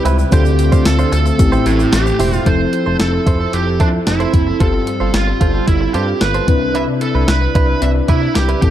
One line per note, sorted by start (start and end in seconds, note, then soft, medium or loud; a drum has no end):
0.00 0.30 C3 medium
0.00 0.34 C3 medium
0.00 0.30 G3 medium
0.00 0.27 C4 medium
0.00 0.28 E4 medium
0.00 0.30 E4 medium
0.00 0.28 G4 medium
0.00 0.29 B4 medium
0.00 0.30 B4 medium
0.05 0.24 C#2 medium
0.05 0.18 C4 medium
0.05 0.18 E4 medium
0.05 0.17 B4 loud
0.05 closed hi-hat medium
0.05 shaker soft
0.18 0.31 C4 medium
0.18 0.32 E4 medium
0.18 0.32 B4 medium
0.18 shaker soft
0.31 0.71 D2 loud
0.31 1.09 D3 medium
0.31 1.38 D3 medium
0.31 2.44 A3 medium
0.31 1.37 C4 medium
0.31 2.44 C4 medium
0.31 0.50 D4 medium
0.31 1.37 D4 medium
0.31 0.45 F4 medium
0.31 1.38 F4 medium
0.31 1.37 F4 medium
0.31 0.86 G4 loud
0.31 1.38 A4 medium
0.31 0.44 C5 medium
0.31 kick loud
0.31 closed hi-hat medium
0.31 shaker medium
0.45 muted clean electric guitar stroke soft
0.45 shaker soft
0.59 muted clean electric guitar stroke soft
0.59 closed hi-hat medium
0.59 shaker medium
0.72 0.84 D4 medium
0.72 0.85 F4 medium
0.72 0.85 C5 medium
0.72 kick medium
0.72 shaker medium
0.85 1.05 D2 loud
0.85 1.12 A4 loud
0.85 snare loud
0.85 closed hi-hat medium
0.85 tambourine medium
0.85 shaker medium
0.99 1.11 D4 medium
0.99 1.12 F4 medium
0.99 1.12 C5 medium
0.99 shaker medium
1.12 1.32 D2 loud
1.12 2.16 A4 loud
1.12 closed hi-hat medium
1.12 shaker medium
1.26 muted clean electric guitar stroke soft
1.26 shaker medium
1.38 1.59 A1 loud
1.38 2.16 A2 medium
1.38 2.44 C4 medium
1.38 2.44 E4 medium
1.38 2.45 G4 medium
1.38 2.44 G4 medium
1.38 2.45 A4 medium
1.38 muted clean electric guitar stroke soft
1.38 kick medium
1.38 closed hi-hat loud
1.38 shaker medium
1.52 1.64 E4 medium
1.52 1.65 G4 medium
1.52 1.65 C5 medium
1.52 shaker soft
1.66 1.85 A1 loud
1.66 1.93 E4 medium
1.66 muted clean electric guitar stroke soft
1.66 closed hi-hat medium
1.66 shaker soft
1.79 muted clean electric guitar stroke soft
1.79 shaker soft
1.93 2.12 A1 loud
1.93 2.36 G4 medium
1.93 muted clean electric guitar stroke soft
1.93 snare loud
1.93 closed hi-hat medium
1.93 tambourine medium
1.93 shaker medium
2.06 muted clean electric guitar stroke medium
2.06 shaker soft
2.19 2.39 E1 medium
2.19 2.33 E4 medium
2.19 2.32 G4 medium
2.19 2.31 C5 medium
2.19 open hi-hat medium
2.19 shaker soft
2.33 2.45 E4 medium
2.33 2.48 F4 medium
2.33 2.46 G4 soft
2.33 2.46 C5 medium
2.33 shaker soft
2.45 2.66 F1 loud
2.45 4.58 F3 medium
2.45 4.57 F3 medium
2.45 4.56 C4 medium
2.45 6.44 C4 medium
2.45 2.65 E4 medium
2.45 4.56 E4 medium
2.45 4.59 E4 medium
2.45 4.58 A4 medium
2.45 2.59 A4 medium
2.45 4.57 A4 medium
2.45 2.96 C5 medium
2.45 2.58 C5 medium
2.45 kick medium
2.45 closed hi-hat medium
2.59 muted clean electric guitar stroke soft
2.73 muted clean electric guitar stroke soft
2.73 closed hi-hat medium
2.86 2.96 F1 medium
2.86 2.98 E4 soft
2.86 2.99 A4 medium
2.86 2.99 C5 medium
3.00 3.19 F1 loud
3.00 3.55 A4 medium
3.00 muted clean electric guitar stroke soft
3.00 snare loud
3.00 closed hi-hat medium
3.13 muted clean electric guitar stroke soft
3.26 3.46 F1 medium
3.26 3.39 E4 medium
3.26 3.39 A4 medium
3.26 3.38 C5 medium
3.26 kick medium
3.26 closed hi-hat medium
3.40 3.52 E4 soft
3.40 3.53 A4 medium
3.40 3.53 C5 medium
3.53 3.82 F1 loud
3.53 3.79 G4 medium
3.53 muted clean electric guitar stroke soft
3.53 closed hi-hat medium
3.66 muted clean electric guitar stroke soft
3.80 3.99 F2 loud
3.80 3.88 D4 medium
3.80 3.98 E4 medium
3.80 3.93 A4 medium
3.80 3.92 C5 medium
3.80 kick medium
3.80 closed hi-hat medium
3.93 muted clean electric guitar stroke soft
4.07 4.26 F1 loud
4.07 4.62 E4 medium
4.07 muted clean electric guitar stroke soft
4.07 snare loud
4.07 closed hi-hat medium
4.20 4.32 E4 medium
4.20 4.33 A4 medium
4.20 4.33 C5 medium
4.20 closed hi-hat soft
4.33 4.53 F#1 medium
4.33 muted clean electric guitar stroke soft
4.33 kick medium
4.33 closed hi-hat medium
4.47 muted clean electric guitar stroke soft
4.59 4.80 G1 loud
4.59 5.37 G2 medium
4.59 6.46 G3 medium
4.59 6.44 C4 medium
4.59 6.44 F4 medium
4.59 4.79 F4 medium
4.59 6.46 F4 medium
4.59 6.45 G4 medium
4.59 5.16 A4 medium
4.59 4.73 A4 medium
4.59 6.45 A4 medium
4.59 4.72 C5 medium
4.59 kick loud
4.59 closed hi-hat medium
4.74 muted clean electric guitar stroke soft
4.87 muted clean electric guitar stroke soft
4.87 closed hi-hat medium
5.00 5.10 G1 medium
5.00 5.13 F4 soft
5.00 5.13 A4 medium
5.00 5.13 C5 medium
5.14 5.33 G1 loud
5.14 5.67 F4 medium
5.14 muted clean electric guitar stroke soft
5.14 snare loud
5.14 closed hi-hat medium
5.27 muted clean electric guitar stroke soft
5.41 5.60 G1 medium
5.41 5.54 F4 medium
5.41 5.53 A4 medium
5.41 5.53 C5 medium
5.41 kick medium
5.41 closed hi-hat medium
5.54 5.66 F4 soft
5.54 5.67 A4 medium
5.54 5.67 C5 medium
5.67 5.87 G1 medium
5.67 5.92 E4 medium
5.67 muted clean electric guitar stroke soft
5.67 kick medium
5.67 closed hi-hat medium
5.81 muted clean electric guitar stroke soft
5.94 6.14 G2 medium
5.94 6.13 F4 medium
5.94 6.22 G4 medium
5.94 6.07 A4 medium
5.94 6.07 C5 medium
5.94 closed hi-hat medium
6.08 muted clean electric guitar stroke soft
6.21 6.41 G1 medium
6.21 6.76 B4 medium
6.21 muted clean electric guitar stroke soft
6.21 snare loud
6.21 closed hi-hat medium
6.34 6.48 F4 medium
6.34 6.48 A4 medium
6.34 6.48 C5 medium
6.34 closed hi-hat soft
6.47 6.87 C2 medium
6.47 8.60 C3 medium
6.47 7.24 C3 medium
6.47 7.79 C4 medium
6.47 7.79 D4 medium
6.47 8.60 D4 medium
6.47 8.60 E4 medium
6.47 7.79 E4 medium
6.47 8.60 B4 medium
6.47 7.80 B4 medium
6.47 muted clean electric guitar stroke soft
6.47 kick loud
6.47 closed hi-hat medium
6.61 muted clean electric guitar stroke soft
6.74 6.93 D4 medium
6.74 6.88 E4 medium
6.74 6.87 B4 medium
6.74 6.82 E5 loud
6.74 closed hi-hat medium
6.88 muted clean electric guitar stroke medium
7.01 7.28 A4 medium
7.01 muted clean electric guitar stroke soft
7.01 closed hi-hat medium
7.15 7.25 C2 medium
7.15 7.27 D4 soft
7.15 7.27 E4 soft
7.15 7.28 B4 medium
7.28 7.48 C2 medium
7.28 7.84 B4 medium
7.28 snare loud
7.28 closed hi-hat medium
7.42 muted clean electric guitar stroke soft
7.55 7.75 C2 medium
7.55 7.68 D4 medium
7.55 7.68 E4 medium
7.55 7.67 B4 medium
7.55 kick medium
7.55 closed hi-hat medium
7.68 7.80 D4 soft
7.68 7.81 E4 medium
7.68 7.81 B4 medium
7.81 8.01 C2 medium
7.81 8.60 C4 soft
7.81 8.62 D4 soft
7.81 8.61 E4 soft
7.81 8.63 D5 medium
7.81 7.89 E5 loud
7.81 muted clean electric guitar stroke soft
7.81 closed hi-hat loud
7.95 muted clean electric guitar stroke soft
8.08 8.28 C3 medium
8.08 8.27 D4 medium
8.08 8.34 E4 medium
8.08 8.21 E4 medium
8.08 8.21 B4 loud
8.08 kick medium
8.08 closed hi-hat medium
8.22 muted clean electric guitar stroke soft
8.35 8.55 C2 loud
8.35 8.61 G4 medium
8.35 muted clean electric guitar stroke soft
8.35 snare loud
8.35 closed hi-hat medium
8.48 8.62 D4 medium
8.48 8.61 E4 medium
8.48 8.62 B4 medium
8.48 closed hi-hat soft
8.61 8.70 A1 medium
8.61 8.70 A2 medium
8.61 8.70 A3 medium
8.61 8.70 C4 medium
8.61 8.70 E4 medium
8.61 8.70 G4 medium
8.61 8.70 A4 medium
8.61 muted clean electric guitar stroke soft
8.61 kick loud
8.61 closed hi-hat medium